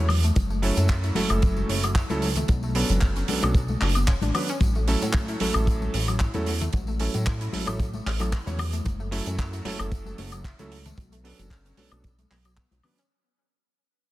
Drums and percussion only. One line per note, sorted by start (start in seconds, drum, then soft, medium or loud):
0.09 open hi-hat loud
0.09 low conga medium
0.09 high woodblock medium
0.24 closed hi-hat medium
0.24 tambourine medium
0.36 kick loud
0.36 closed hi-hat medium
0.36 tambourine medium
0.36 high conga medium
0.50 tambourine soft
0.63 open hi-hat loud
0.77 closed hi-hat medium
0.77 tambourine medium
0.77 high conga medium
0.88 kick loud
0.88 clap loud
0.88 closed hi-hat medium
0.88 tambourine medium
1.03 closed hi-hat medium
1.03 tambourine soft
1.15 open hi-hat loud
1.15 high conga loud
1.30 closed hi-hat medium
1.30 tambourine medium
1.30 high woodblock medium
1.42 kick loud
1.42 closed hi-hat medium
1.42 tambourine medium
1.57 tambourine soft
1.57 high conga medium
1.69 open hi-hat loud
1.83 closed hi-hat medium
1.83 tambourine medium
1.83 high woodblock medium
1.95 kick loud
1.95 clap loud
1.95 closed hi-hat medium
1.95 tambourine medium
2.10 closed hi-hat soft
2.10 tambourine soft
2.10 high conga medium
2.22 open hi-hat loud
2.36 closed hi-hat medium
2.36 tambourine medium
2.36 low conga medium
2.48 kick loud
2.48 closed hi-hat medium
2.48 tambourine medium
2.48 high conga medium
2.63 tambourine soft
2.75 open hi-hat loud
2.90 closed hi-hat medium
2.90 tambourine medium
2.90 high conga medium
3.01 kick loud
3.01 clap loud
3.01 closed hi-hat medium
3.01 tambourine medium
3.16 closed hi-hat soft
3.16 tambourine soft
3.28 open hi-hat loud
3.28 high conga medium
3.42 closed hi-hat medium
3.42 tambourine medium
3.42 high woodblock medium
3.55 kick loud
3.55 closed hi-hat medium
3.55 tambourine medium
3.68 tambourine soft
3.68 high conga medium
3.81 clap medium
3.81 open hi-hat loud
3.95 closed hi-hat medium
3.95 tambourine medium
3.95 high woodblock medium
4.07 kick loud
4.07 clap loud
4.07 closed hi-hat medium
4.21 closed hi-hat medium
4.21 tambourine soft
4.21 high conga loud
4.34 open hi-hat loud
4.34 low conga medium
4.34 high woodblock medium
4.48 closed hi-hat medium
4.48 tambourine medium
4.60 kick loud
4.60 closed hi-hat medium
4.60 tambourine medium
4.60 high conga medium
4.75 tambourine soft
4.88 open hi-hat loud
5.02 closed hi-hat medium
5.02 tambourine medium
5.02 high conga medium
5.13 kick loud
5.13 clap loud
5.13 closed hi-hat medium
5.13 tambourine medium
5.28 closed hi-hat medium
5.28 tambourine soft
5.40 open hi-hat loud
5.40 high conga medium
5.54 closed hi-hat medium
5.54 tambourine medium
5.54 high woodblock medium
5.67 kick loud
5.67 closed hi-hat medium
5.67 tambourine medium
5.81 tambourine soft
5.81 high conga medium
5.94 open hi-hat loud
6.08 closed hi-hat medium
6.08 tambourine medium
6.08 high woodblock medium
6.20 kick loud
6.20 clap loud
6.20 closed hi-hat medium
6.20 tambourine medium
6.34 closed hi-hat soft
6.34 tambourine soft
6.34 high conga medium
6.46 open hi-hat loud
6.61 closed hi-hat medium
6.61 tambourine medium
6.61 low conga medium
6.73 kick loud
6.73 closed hi-hat medium
6.73 tambourine medium
6.73 high conga medium
6.87 tambourine soft
7.00 open hi-hat loud
7.14 closed hi-hat medium
7.14 tambourine medium
7.14 high conga medium
7.26 kick loud
7.26 clap loud
7.26 closed hi-hat medium
7.26 tambourine medium
7.41 closed hi-hat soft
7.41 tambourine soft
7.53 open hi-hat loud
7.53 high conga medium
7.67 closed hi-hat medium
7.67 tambourine medium
7.67 high woodblock medium
7.80 kick loud
7.80 closed hi-hat medium
7.80 tambourine medium
7.93 tambourine soft
7.93 high conga medium
8.07 clap medium
8.07 open hi-hat loud
8.19 closed hi-hat medium
8.19 tambourine medium
8.19 high woodblock medium
8.32 kick loud
8.32 clap loud
8.32 closed hi-hat medium
8.32 tambourine medium
8.47 closed hi-hat medium
8.47 tambourine soft
8.47 high conga medium
8.58 open hi-hat loud
8.58 low conga medium
8.58 high woodblock medium
8.72 closed hi-hat medium
8.72 tambourine medium
8.84 kick loud
8.84 closed hi-hat medium
8.84 tambourine medium
8.84 high conga medium
9.00 tambourine soft
9.12 open hi-hat loud
9.26 closed hi-hat medium
9.26 tambourine medium
9.26 high conga medium
9.38 kick medium
9.38 clap loud
9.38 closed hi-hat medium
9.38 tambourine medium
9.53 closed hi-hat soft
9.53 tambourine soft
9.65 open hi-hat loud
9.65 high conga medium
9.79 closed hi-hat medium
9.79 tambourine medium
9.79 high woodblock medium
9.92 kick loud
9.92 closed hi-hat medium
9.92 tambourine medium
10.05 tambourine soft
10.05 high conga medium
10.18 open hi-hat loud
10.32 closed hi-hat medium
10.32 tambourine medium
10.32 high woodblock medium
10.44 kick loud
10.44 clap loud
10.44 closed hi-hat medium
10.44 tambourine medium
10.59 closed hi-hat medium
10.59 tambourine soft
10.59 high conga medium
10.72 open hi-hat medium
10.86 closed hi-hat medium
10.86 tambourine medium
10.86 low conga medium
10.98 kick loud
10.98 closed hi-hat medium
10.98 tambourine medium
10.98 high conga medium
11.12 closed hi-hat medium
11.12 tambourine soft
11.25 open hi-hat loud
11.39 closed hi-hat medium
11.39 tambourine medium
11.39 high conga medium
11.50 kick loud
11.50 clap loud
11.50 closed hi-hat medium
11.50 tambourine medium
11.65 closed hi-hat soft
11.65 tambourine soft
11.77 open hi-hat loud
11.77 high conga medium
11.92 closed hi-hat medium
11.92 tambourine medium
11.92 high woodblock medium
12.04 kick loud
12.04 closed hi-hat medium
12.04 tambourine medium
12.19 closed hi-hat soft
12.19 tambourine soft
12.19 high conga medium
12.31 clap medium
12.31 open hi-hat medium
12.45 closed hi-hat medium
12.45 tambourine medium
12.45 high woodblock medium
12.57 kick loud
12.57 clap loud
12.57 closed hi-hat medium
12.71 closed hi-hat medium
12.71 tambourine soft
12.71 high conga medium
12.83 open hi-hat loud
12.83 low conga medium
12.83 high woodblock medium
12.98 closed hi-hat medium
12.98 tambourine medium